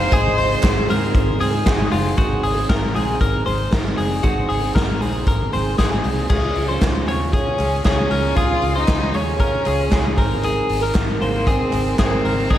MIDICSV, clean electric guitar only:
0, 0, Header, 1, 2, 480
1, 0, Start_track
1, 0, Key_signature, -5, "major"
1, 0, Tempo, 516351
1, 111, Time_signature, 4, 2, 24, 8
1, 11696, End_track
2, 0, Start_track
2, 0, Title_t, "Clean electric guitar"
2, 0, Program_c, 0, 27
2, 0, Note_on_c, 0, 70, 83
2, 113, Note_off_c, 0, 70, 0
2, 123, Note_on_c, 0, 68, 101
2, 353, Note_off_c, 0, 68, 0
2, 357, Note_on_c, 0, 72, 78
2, 803, Note_off_c, 0, 72, 0
2, 840, Note_on_c, 0, 70, 76
2, 1284, Note_off_c, 0, 70, 0
2, 1306, Note_on_c, 0, 68, 77
2, 1756, Note_off_c, 0, 68, 0
2, 1781, Note_on_c, 0, 65, 63
2, 2021, Note_off_c, 0, 65, 0
2, 2025, Note_on_c, 0, 66, 89
2, 2263, Note_off_c, 0, 66, 0
2, 2263, Note_on_c, 0, 68, 80
2, 2500, Note_off_c, 0, 68, 0
2, 2504, Note_on_c, 0, 70, 72
2, 2742, Note_off_c, 0, 70, 0
2, 2745, Note_on_c, 0, 68, 67
2, 2980, Note_off_c, 0, 68, 0
2, 2984, Note_on_c, 0, 70, 81
2, 3212, Note_off_c, 0, 70, 0
2, 3216, Note_on_c, 0, 72, 70
2, 3466, Note_off_c, 0, 72, 0
2, 3466, Note_on_c, 0, 70, 75
2, 3693, Note_off_c, 0, 70, 0
2, 3696, Note_on_c, 0, 68, 69
2, 3934, Note_on_c, 0, 66, 90
2, 3938, Note_off_c, 0, 68, 0
2, 4172, Note_on_c, 0, 68, 76
2, 4177, Note_off_c, 0, 66, 0
2, 4412, Note_off_c, 0, 68, 0
2, 4416, Note_on_c, 0, 70, 60
2, 4663, Note_off_c, 0, 70, 0
2, 4663, Note_on_c, 0, 68, 66
2, 4901, Note_off_c, 0, 68, 0
2, 4906, Note_on_c, 0, 70, 67
2, 5140, Note_off_c, 0, 70, 0
2, 5143, Note_on_c, 0, 72, 71
2, 5372, Note_off_c, 0, 72, 0
2, 5376, Note_on_c, 0, 68, 69
2, 5829, Note_off_c, 0, 68, 0
2, 5854, Note_on_c, 0, 68, 75
2, 6196, Note_off_c, 0, 68, 0
2, 6215, Note_on_c, 0, 72, 62
2, 6556, Note_off_c, 0, 72, 0
2, 6582, Note_on_c, 0, 73, 70
2, 6813, Note_off_c, 0, 73, 0
2, 6817, Note_on_c, 0, 68, 76
2, 7271, Note_off_c, 0, 68, 0
2, 7304, Note_on_c, 0, 68, 75
2, 7536, Note_off_c, 0, 68, 0
2, 7540, Note_on_c, 0, 70, 68
2, 7781, Note_off_c, 0, 70, 0
2, 7785, Note_on_c, 0, 68, 86
2, 8122, Note_off_c, 0, 68, 0
2, 8140, Note_on_c, 0, 72, 62
2, 8480, Note_off_c, 0, 72, 0
2, 8504, Note_on_c, 0, 73, 66
2, 8736, Note_off_c, 0, 73, 0
2, 8739, Note_on_c, 0, 70, 73
2, 8982, Note_off_c, 0, 70, 0
2, 8985, Note_on_c, 0, 68, 67
2, 9217, Note_off_c, 0, 68, 0
2, 9228, Note_on_c, 0, 68, 71
2, 9465, Note_on_c, 0, 70, 72
2, 9467, Note_off_c, 0, 68, 0
2, 9705, Note_off_c, 0, 70, 0
2, 9709, Note_on_c, 0, 68, 81
2, 10046, Note_off_c, 0, 68, 0
2, 10065, Note_on_c, 0, 70, 65
2, 10405, Note_off_c, 0, 70, 0
2, 10427, Note_on_c, 0, 72, 68
2, 10663, Note_on_c, 0, 68, 72
2, 10667, Note_off_c, 0, 72, 0
2, 11117, Note_off_c, 0, 68, 0
2, 11149, Note_on_c, 0, 68, 74
2, 11385, Note_off_c, 0, 68, 0
2, 11389, Note_on_c, 0, 70, 63
2, 11620, Note_off_c, 0, 70, 0
2, 11623, Note_on_c, 0, 68, 85
2, 11696, Note_off_c, 0, 68, 0
2, 11696, End_track
0, 0, End_of_file